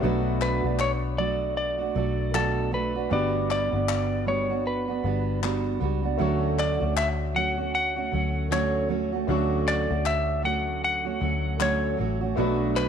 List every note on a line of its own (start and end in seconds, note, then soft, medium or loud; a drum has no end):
0.00 0.60 B1 loud
0.00 0.64 B2 medium
0.00 0.65 F#3 loud
0.00 3.06 A3 medium
0.00 0.65 A3 medium
0.00 3.06 B3 medium
0.00 3.07 D4 medium
0.00 3.07 F#4 medium
0.04 0.64 D4 medium
0.04 0.62 F#4 loud
0.04 3.08 B4 medium
0.41 0.80 B4 loud
0.41 clap medium
0.63 1.91 B1 loud
0.63 1.18 A3 soft
0.63 1.19 D4 medium
0.63 1.18 F#4 soft
0.79 0.91 C#5 loud
0.79 clap medium
1.17 1.79 F#3 medium
1.17 1.80 A3 medium
1.17 1.80 D4 medium
1.17 1.77 F#4 medium
1.17 1.56 D5 medium
1.57 2.36 D5 loud
1.79 1.94 A3 soft
1.79 1.96 D4 medium
1.79 1.95 F#4 medium
1.94 3.07 B1 loud
1.94 2.32 F#3 medium
1.94 2.33 A3 medium
1.94 2.34 D4 medium
1.94 2.34 F#4 medium
2.33 2.72 B2 medium
2.33 2.70 F#3 medium
2.33 2.71 A3 medium
2.33 2.72 D4 medium
2.33 2.73 F#4 medium
2.33 2.74 A4 medium
2.33 clap medium
2.71 2.95 F#3 medium
2.71 2.95 A3 medium
2.71 2.96 D4 medium
2.71 2.94 F#4 medium
2.71 3.09 B4 loud
2.95 3.10 A3 soft
2.95 3.10 D4 soft
2.95 3.11 F#4 medium
3.09 3.69 G1 loud
3.09 6.15 G3 medium
3.09 3.72 G3 medium
3.09 6.15 B3 medium
3.09 3.73 B3 medium
3.09 6.16 D4 medium
3.09 3.72 D4 medium
3.09 6.16 F#4 medium
3.09 3.71 F#4 loud
3.09 6.17 B4 medium
3.09 3.50 D5 loud
3.51 4.28 D5 loud
3.51 clap medium
3.72 5.00 G1 medium
3.72 4.26 B3 soft
3.72 4.27 D4 soft
3.72 4.26 F#4 medium
3.89 clap medium
4.26 4.49 G3 medium
4.26 4.50 B3 medium
4.26 4.50 D4 medium
4.26 4.48 F#4 medium
4.26 4.63 C#5 medium
4.49 4.90 B3 soft
4.49 4.88 D4 soft
4.49 4.87 F#4 medium
4.67 5.39 B4 medium
4.88 5.04 B3 soft
4.88 5.04 D4 soft
4.88 5.04 F#4 medium
5.03 5.77 G1 loud
5.03 5.41 G3 medium
5.03 5.42 B3 medium
5.03 5.43 D4 medium
5.03 5.44 F#4 medium
5.42 5.79 G3 medium
5.42 5.80 B3 medium
5.42 5.81 D4 medium
5.42 5.82 F#4 medium
5.42 clap medium
5.80 6.17 C#2 medium
5.80 6.04 G3 medium
5.80 6.04 B3 medium
5.80 6.04 D4 medium
5.80 6.02 F#4 medium
6.03 6.19 B3 soft
6.03 6.20 D4 medium
6.03 6.19 F#4 medium
6.17 6.78 D2 loud
6.17 6.81 D3 medium
6.17 6.81 F#3 loud
6.17 9.24 A3 medium
6.17 6.81 A3 loud
6.17 6.81 C#4 medium
6.17 9.25 D4 medium
6.17 9.25 F#4 medium
6.17 6.79 F#4 loud
6.17 9.25 C#6 medium
6.59 6.97 D5 loud
6.59 clap medium
6.80 8.09 D2 loud
6.80 7.34 A3 soft
6.80 7.35 C#4 soft
6.80 7.35 F#4 medium
6.97 7.08 E5 loud
6.97 clap medium
7.34 7.58 F#3 medium
7.34 7.59 A3 medium
7.34 7.58 C#4 medium
7.34 7.56 F#4 medium
7.34 7.74 F#5 loud
7.58 7.98 A3 soft
7.58 7.97 C#4 soft
7.58 7.95 F#4 medium
7.75 8.54 F#5 loud
7.96 8.12 A3 soft
7.96 8.13 C#4 soft
7.96 8.12 F#4 soft
8.12 9.25 D2 medium
8.12 8.49 F#3 medium
8.12 8.50 A3 medium
8.12 8.51 C#4 medium
8.12 8.51 F#4 medium
8.50 8.90 D3 medium
8.50 8.87 F#3 medium
8.50 8.89 A3 medium
8.50 8.90 C#4 medium
8.50 8.91 F#4 medium
8.50 8.88 C#5 medium
8.50 clap medium
8.89 9.13 F#3 medium
8.89 9.13 A3 medium
8.89 9.13 C#4 medium
8.89 9.11 F#4 medium
9.12 9.28 A3 medium
9.12 9.28 C#4 medium
9.12 9.28 F#4 medium
9.27 9.86 D2 loud
9.27 9.90 D3 medium
9.27 9.90 F#3 loud
9.27 12.33 A3 medium
9.27 9.91 A3 medium
9.27 9.90 C#4 medium
9.27 12.33 D4 medium
9.27 9.88 F#4 medium
9.27 12.34 F#4 medium
9.27 12.35 C#6 medium
9.68 10.04 D5 loud
9.68 clap medium
9.89 11.18 D2 loud
9.89 10.42 A3 soft
9.89 10.44 C#4 soft
9.89 10.44 F#4 medium
10.06 10.42 E5 loud
10.06 clap medium
10.42 11.05 F#3 medium
10.42 11.06 A3 medium
10.42 11.05 C#4 medium
10.42 11.04 F#4 medium
10.42 10.83 F#5 medium
10.84 11.63 F#5 loud
11.05 11.20 A3 soft
11.05 11.21 C#4 medium
11.05 11.21 F#4 medium
11.20 11.95 D2 loud
11.20 11.58 F#3 medium
11.20 11.59 A3 medium
11.20 11.60 C#4 medium
11.20 11.60 F#4 medium
11.59 11.98 D3 medium
11.59 11.96 F#3 medium
11.59 11.97 A3 medium
11.59 11.98 C#4 medium
11.59 11.99 F#4 medium
11.59 11.97 C#5 medium
11.59 clap medium
11.97 12.35 A1 loud
11.97 12.21 F#3 medium
11.97 12.22 A3 medium
11.97 12.21 C#4 medium
11.97 12.20 F#4 medium
12.21 12.37 A3 medium
12.21 12.38 C#4 medium
12.21 12.37 F#4 medium
12.36 12.89 B1 loud
12.36 12.89 B2 medium
12.36 12.89 F#3 loud
12.36 12.89 A3 medium
12.36 12.89 A3 loud
12.36 12.89 B3 medium
12.36 12.89 D4 medium
12.36 12.89 D4 loud
12.36 12.89 F#4 medium
12.36 12.89 F#4 loud
12.36 12.89 B4 medium
12.76 12.89 B4 loud
12.76 clap medium